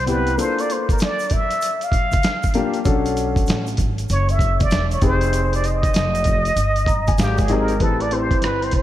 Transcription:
0.00 0.35 C2 medium
0.00 0.11 C5 loud
0.06 0.29 B3 medium
0.06 0.30 C4 medium
0.06 0.30 E4 medium
0.06 0.30 G4 medium
0.06 0.42 B4 loud
0.06 closed hi-hat medium
0.06 low conga medium
0.06 shaker soft
0.27 closed hi-hat medium
0.27 shaker soft
0.38 1.18 A#3 medium
0.38 1.18 D4 medium
0.38 1.18 F4 medium
0.38 1.18 A4 medium
0.38 0.62 C5 medium
0.38 closed hi-hat medium
0.38 shaker medium
0.59 0.73 D5 loud
0.59 closed hi-hat medium
0.59 shaker soft
0.70 0.90 C5 medium
0.70 closed hi-hat medium
0.70 shaker soft
0.89 1.01 A#4 medium
0.89 kick medium
0.89 closed hi-hat soft
0.89 shaker soft
0.98 snare loud
0.98 closed hi-hat medium
0.98 shaker medium
1.03 1.34 D5 medium
1.19 closed hi-hat soft
1.19 shaker soft
1.30 1.85 E5 loud
1.30 kick medium
1.30 closed hi-hat medium
1.30 low conga medium
1.30 shaker soft
1.51 closed hi-hat medium
1.51 shaker soft
1.61 closed hi-hat loud
1.61 shaker medium
1.81 2.75 F5 loud
1.81 closed hi-hat soft
1.81 shaker soft
1.92 kick medium
1.92 closed hi-hat medium
1.92 low conga medium
1.92 shaker soft
2.12 kick medium
2.12 closed hi-hat medium
2.12 high conga medium
2.12 shaker soft
2.23 snare loud
2.23 closed hi-hat medium
2.23 shaker medium
2.43 kick medium
2.43 closed hi-hat soft
2.43 shaker soft
2.54 2.77 A#3 medium
2.54 2.77 D4 medium
2.54 2.77 F4 medium
2.54 2.78 G4 loud
2.54 closed hi-hat medium
2.54 low conga medium
2.54 shaker soft
2.74 closed hi-hat medium
2.74 shaker soft
2.85 3.44 B1 loud
2.85 3.65 C#4 medium
2.85 3.65 D4 medium
2.85 3.65 F#4 medium
2.85 3.65 A4 medium
2.85 kick loud
2.85 closed hi-hat medium
2.85 shaker medium
3.06 closed hi-hat medium
3.06 shaker soft
3.17 closed hi-hat medium
3.17 shaker medium
3.36 kick medium
3.36 closed hi-hat soft
3.36 shaker soft
3.46 3.77 A1 medium
3.46 snare loud
3.46 closed hi-hat medium
3.46 shaker medium
3.67 closed hi-hat soft
3.67 shaker soft
3.77 4.08 G#1 medium
3.77 kick medium
3.77 closed hi-hat medium
3.77 low conga medium
3.77 shaker soft
3.98 closed hi-hat medium
3.98 shaker soft
4.09 4.68 F#1 loud
4.09 4.32 C#5 medium
4.09 closed hi-hat medium
4.09 shaker medium
4.29 4.64 E5 loud
4.29 closed hi-hat soft
4.29 shaker soft
4.39 kick medium
4.39 closed hi-hat medium
4.39 low conga medium
4.39 shaker soft
4.60 4.92 D5 loud
4.60 kick loud
4.60 closed hi-hat medium
4.60 high conga medium
4.60 shaker soft
4.71 5.01 E1 medium
4.71 snare loud
4.71 closed hi-hat medium
4.71 shaker medium
4.91 5.02 C#5 medium
4.91 closed hi-hat soft
4.91 shaker soft
5.01 5.91 F1 medium
5.01 6.03 C4 medium
5.01 6.03 D#4 medium
5.01 6.03 G4 medium
5.01 6.03 G#4 medium
5.01 5.50 C5 loud
5.01 kick loud
5.01 closed hi-hat medium
5.01 low conga medium
5.01 shaker soft
5.21 closed hi-hat medium
5.21 shaker soft
5.33 closed hi-hat medium
5.33 shaker medium
5.53 5.67 D5 loud
5.53 closed hi-hat medium
5.53 shaker soft
5.64 7.20 D#5 loud
5.64 closed hi-hat medium
5.64 shaker medium
5.83 kick medium
5.83 closed hi-hat soft
5.83 shaker soft
5.94 6.53 F1 medium
5.94 snare loud
5.94 closed hi-hat medium
5.94 shaker medium
6.15 closed hi-hat soft
6.15 shaker medium
6.24 kick medium
6.24 closed hi-hat medium
6.24 low conga medium
6.24 shaker soft
6.45 closed hi-hat medium
6.45 shaker soft
6.56 7.15 G1 loud
6.56 closed hi-hat loud
6.56 shaker medium
6.76 closed hi-hat soft
6.76 shaker soft
6.86 7.06 A#5 medium
6.86 kick medium
6.86 closed hi-hat medium
6.86 low conga medium
6.86 shaker soft
7.07 7.18 G#5 medium
7.07 kick medium
7.07 closed hi-hat medium
7.07 high conga medium
7.07 shaker soft
7.18 7.77 G#1 loud
7.18 7.42 G4 medium
7.18 7.47 F5 medium
7.18 snare loud
7.18 closed hi-hat medium
7.18 shaker medium
7.38 7.53 G#4 medium
7.38 kick loud
7.38 closed hi-hat soft
7.38 shaker medium
7.48 7.72 C4 medium
7.48 7.72 D#4 medium
7.48 7.72 G4 medium
7.48 7.72 G#4 loud
7.48 7.84 A#4 loud
7.48 7.78 D#5 medium
7.48 closed hi-hat medium
7.48 low conga medium
7.48 shaker soft
7.68 closed hi-hat medium
7.68 shaker soft
7.80 8.29 A1 loud
7.80 8.03 C4 medium
7.80 8.03 E4 medium
7.80 8.03 G4 medium
7.80 8.03 A4 medium
7.80 8.03 B4 medium
7.80 kick medium
7.80 closed hi-hat medium
8.00 8.14 D5 loud
8.00 closed hi-hat medium
8.11 8.82 C4 medium
8.11 8.82 E4 medium
8.11 8.82 G4 medium
8.11 8.20 B4 medium
8.11 8.43 C5 medium
8.11 closed hi-hat medium
8.19 8.82 C5 medium
8.31 muted upright bass stroke soft
8.31 kick medium
8.31 closed hi-hat soft
8.42 8.71 G1 medium
8.42 8.65 B4 medium
8.42 cross-stick loud
8.42 closed hi-hat medium
8.62 8.74 C5 medium
8.62 closed hi-hat soft
8.71 8.82 B1 medium
8.71 8.82 C5 medium
8.71 kick medium
8.71 closed hi-hat medium

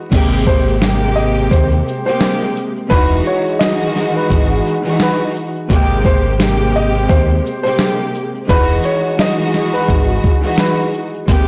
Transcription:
0.11 1.48 G#1 loud
0.11 0.76 C3 loud
0.11 2.88 G#3 medium
0.11 0.77 G#3 loud
0.11 0.77 A#3 loud
0.11 2.88 C4 medium
0.11 2.88 G4 loud
0.11 0.78 G4 loud
0.11 kick loud
0.11 closed hi-hat loud
0.11 crash loud
0.11 shaker medium
0.31 shaker soft
0.47 0.78 C5 medium
0.47 kick medium
0.47 shaker medium
0.67 shaker medium
0.80 1.94 C3 loud
0.80 1.94 G#3 medium
0.80 1.95 A#3 loud
0.80 1.95 G4 loud
0.80 snare loud
0.80 closed hi-hat medium
0.80 shaker medium
1.01 shaker medium
1.16 1.34 D#5 medium
1.16 shaker medium
1.35 shaker medium
1.51 1.80 D#2 loud
1.51 2.02 C5 medium
1.51 kick loud
1.51 closed hi-hat medium
1.51 shaker medium
1.71 shaker medium
1.87 shaker soft
1.87 shaker medium
2.04 2.69 C3 loud
2.04 2.70 G#3 medium
2.04 2.70 A#3 medium
2.04 2.70 G4 loud
2.04 2.37 C5 medium
2.04 shaker soft
2.21 snare loud
2.21 closed hi-hat medium
2.21 shaker medium
2.41 shaker soft
2.56 shaker medium
2.76 shaker soft
2.90 3.20 E1 loud
2.90 3.55 E3 loud
2.90 5.67 E3 medium
2.90 3.56 G#3 medium
2.90 5.67 D#4 medium
2.90 3.56 D#4 loud
2.90 5.67 F#4 medium
2.90 3.56 F#4 loud
2.90 5.67 G#4 medium
2.90 3.22 B4 loud
2.90 kick loud
2.90 closed hi-hat loud
2.90 shaker medium
3.10 shaker soft
3.26 3.58 C#5 medium
3.26 shaker medium
3.46 shaker medium
3.59 4.74 E3 loud
3.59 4.74 G#3 loud
3.59 4.74 D#4 loud
3.59 4.75 F#4 loud
3.59 4.11 D#5 medium
3.59 snare loud
3.59 closed hi-hat medium
3.59 shaker medium
3.80 shaker medium
3.96 snare soft
3.96 shaker medium
4.14 4.97 B4 medium
4.14 shaker medium
4.30 4.59 G#1 loud
4.30 kick loud
4.30 closed hi-hat medium
4.30 shaker medium
4.50 shaker medium
4.66 shaker soft
4.83 5.48 E3 loud
4.83 5.48 G#3 medium
4.83 5.49 D#4 medium
4.83 5.49 F#4 loud
4.83 shaker soft
5.00 5.33 B4 medium
5.00 snare loud
5.00 closed hi-hat medium
5.00 shaker medium
5.20 shaker medium
5.35 shaker medium
5.55 shaker soft
5.69 7.06 G#1 loud
5.69 6.34 C3 loud
5.69 8.46 G#3 medium
5.69 6.35 G#3 loud
5.69 6.35 A#3 loud
5.69 8.46 C4 medium
5.69 8.46 G4 medium
5.69 6.36 G4 loud
5.69 kick loud
5.69 closed hi-hat loud
5.69 shaker medium
5.89 shaker soft
6.05 6.37 C5 medium
6.05 kick loud
6.05 shaker medium
6.25 shaker medium
6.38 7.52 C3 loud
6.38 7.52 G#3 medium
6.38 7.53 A#3 loud
6.38 7.53 G4 loud
6.38 snare loud
6.38 closed hi-hat medium
6.38 shaker medium
6.59 shaker medium
6.75 6.93 D#5 medium
6.75 shaker medium
6.93 shaker medium
7.09 7.38 D#2 loud
7.09 7.61 C5 medium
7.09 kick loud
7.09 closed hi-hat medium
7.09 shaker medium
7.29 shaker medium
7.45 shaker soft
7.45 shaker medium
7.63 8.27 C3 loud
7.63 8.28 G#3 medium
7.63 8.28 A#3 medium
7.63 8.28 G4 loud
7.63 7.95 C5 medium
7.63 shaker soft
7.79 snare loud
7.79 closed hi-hat medium
7.79 shaker medium
7.99 shaker medium
8.15 shaker medium
8.35 shaker medium
8.48 8.78 E1 loud
8.48 9.13 E3 loud
8.48 11.26 E3 medium
8.48 9.14 G#3 medium
8.48 9.14 D#4 medium
8.48 11.26 D#4 medium
8.48 11.26 F#4 medium
8.48 9.14 F#4 loud
8.48 11.26 G#4 medium
8.48 8.81 B4 loud
8.48 kick loud
8.48 closed hi-hat loud
8.48 shaker medium
8.68 shaker soft
8.84 9.16 C#5 medium
8.84 closed hi-hat soft
8.84 shaker medium
9.04 shaker medium
9.18 10.32 E3 loud
9.18 10.32 G#3 loud
9.18 10.33 D#4 medium
9.18 10.33 F#4 loud
9.18 9.71 D#5 medium
9.18 snare loud
9.18 closed hi-hat medium
9.18 shaker medium
9.38 shaker medium
9.54 snare soft
9.54 closed hi-hat medium
9.54 shaker medium
9.73 10.55 B4 medium
9.73 shaker medium
9.89 10.17 G#1 loud
9.89 kick loud
9.89 closed hi-hat medium
9.89 shaker medium
10.08 shaker medium
10.24 kick loud
10.24 shaker soft
10.24 shaker medium
10.42 11.06 E3 loud
10.42 11.06 G#3 medium
10.42 11.07 D#4 loud
10.42 11.07 F#4 loud
10.42 shaker soft
10.58 10.90 B4 medium
10.58 snare loud
10.58 closed hi-hat medium
10.58 shaker medium
10.78 shaker soft
10.94 shaker medium
11.14 shaker medium
11.27 11.48 G#1 loud
11.27 11.48 C3 loud
11.27 11.48 G#3 loud
11.27 11.48 G#3 medium
11.27 11.48 A#3 loud
11.27 11.48 C4 medium
11.27 11.48 G4 loud
11.27 kick loud
11.27 closed hi-hat loud
11.27 shaker medium

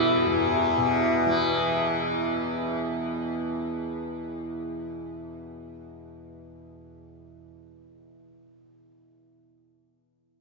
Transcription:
0.00 0.26 E2 medium
0.00 0.77 B2 medium
0.00 1.26 E3 medium
0.00 0.16 E4 medium
0.27 7.42 E2 medium
0.77 7.92 B2 medium
1.26 8.41 E3 medium

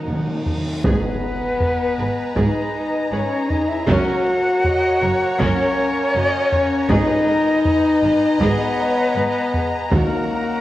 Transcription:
0.00 0.47 A#3 medium
0.00 0.48 C#4 medium
0.00 0.60 D#4 medium
0.00 0.48 F#4 medium
0.00 0.47 A#4 medium
0.00 0.61 A#4 medium
0.00 0.51 C#5 medium
0.00 0.52 F#5 medium
0.00 0.64 F#5 medium
0.00 reverse cymbal medium
0.04 0.15 D#2 soft
0.04 0.11 D#3 medium
0.04 0.16 A#3 soft
0.12 0.18 D#3 medium
0.19 0.26 D#3 medium
0.27 0.32 D#3 medium
0.34 0.41 D#3 medium
0.42 0.49 D#3 medium
0.46 taiko low medium
0.51 0.56 D#3 medium
0.58 0.64 D#3 medium
0.66 0.72 D#3 medium
0.73 0.80 D#3 loud
0.84 0.92 G#1 medium
0.84 1.95 G#2 loud
0.84 0.93 G#2 medium
0.84 3.83 B3 medium
0.84 2.33 B3 loud
0.84 1.20 G#4 medium
0.84 3.83 B4 medium
0.84 2.37 B4 loud
0.84 3.08 B4 medium
0.84 3.83 D#5 medium
0.84 3.83 G#5 loud
0.84 6.85 A#5 medium
0.84 6.85 A#5 loud
0.84 taiko loud
0.84 impact medium
1.60 taiko low medium
1.99 2.08 G#1 medium
1.99 2.07 G#2 medium
1.99 2.07 G#4 medium
1.99 2.07 B4 medium
2.36 2.45 G#1 medium
2.36 2.44 G#2 medium
2.36 3.10 D#4 loud
2.36 2.71 G#4 medium
2.36 3.14 D#5 loud
2.36 taiko medium
3.11 3.20 G#1 medium
3.11 3.20 G#2 medium
3.11 3.50 C#4 loud
3.11 3.19 G#4 medium
3.11 3.86 G#4 medium
3.11 3.19 B4 medium
3.11 3.52 C#5 loud
3.49 3.68 D#4 loud
3.49 3.70 D#5 medium
3.49 taiko low medium
3.68 3.87 E4 loud
3.68 3.87 E5 medium
3.87 3.96 F#1 loud
3.87 3.95 F#2 loud
3.87 6.89 A#3 loud
3.87 4.22 C#4 loud
3.87 5.36 F#4 loud
3.87 4.22 A#4 medium
3.87 4.63 A#4 medium
3.87 6.89 C#5 medium
3.87 6.89 C#5 loud
3.87 6.89 F#5 loud
3.87 5.41 F#5 loud
3.87 taiko loud
4.64 5.01 D#5 loud
4.64 taiko low medium
5.01 5.10 F#1 medium
5.01 5.09 F#2 medium
5.01 5.10 A#4 medium
5.01 5.39 C#5 medium
5.39 5.48 F#1 loud
5.39 5.47 F#2 loud
5.39 6.90 C#4 loud
5.39 5.75 C#4 loud
5.39 6.14 A#4 loud
5.39 5.75 A#4 medium
5.39 6.91 C#5 loud
5.39 taiko medium
6.14 6.23 F#1 medium
6.14 6.22 F#2 medium
6.14 6.23 F#4 medium
6.14 6.23 A#4 medium
6.14 6.52 D#5 loud
6.52 6.89 C#5 medium
6.52 taiko low medium
6.89 6.99 G#1 loud
6.89 6.97 G#2 loud
6.89 7.98 G#2 loud
6.89 9.91 B3 loud
6.89 8.40 D#4 loud
6.89 7.25 G#4 loud
6.89 7.27 B4 loud
6.89 10.61 D#5 loud
6.89 8.12 D#5 loud
6.89 9.92 D#5 loud
6.89 9.91 G#5 loud
6.89 10.61 A#5 loud
6.89 10.61 A#5 medium
6.89 taiko loud
7.28 7.65 A#4 loud
7.65 8.39 B4 loud
7.65 taiko low medium
8.02 8.11 G#1 medium
8.02 8.10 G#2 medium
8.02 8.11 G#4 medium
8.02 8.11 B4 medium
8.40 8.49 G#1 loud
8.40 8.49 G#2 loud
8.40 9.75 B3 loud
8.40 8.75 G#4 loud
8.40 9.88 B4 loud
8.40 8.78 D#5 medium
8.40 taiko medium
8.79 9.16 C#5 medium
9.15 9.24 G#1 medium
9.15 9.23 G#2 medium
9.15 9.24 G#4 medium
9.15 9.54 B4 medium
9.15 9.24 B4 medium
9.54 9.91 G#4 medium
9.54 taiko low medium
9.91 9.99 D#2 medium
9.91 10.00 D#2 medium
9.91 10.61 D#3 loud
9.91 10.61 A#3 loud
9.91 10.61 C#4 loud
9.91 10.27 F#4 medium
9.91 10.61 F#4 medium
9.91 10.61 A#4 loud
9.91 10.27 A#4 medium
9.91 10.61 F#5 medium
9.91 10.61 F#5 loud
9.91 taiko loud

